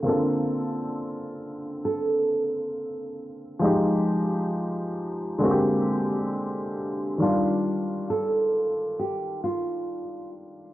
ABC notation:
X:1
M:4/4
L:1/8
Q:"Swing 16ths" 1/4=67
K:Bb
V:1 name="Nylon-string guitar"
F4 A3 z | z8 | F2 A2 G F2 z |]
V:2 name="Upright piano"
[_D,=D,B,CA]8 | [F,_A,EG]4 [D,A,B,C_G=G]4 | [E,G,DF]8 |]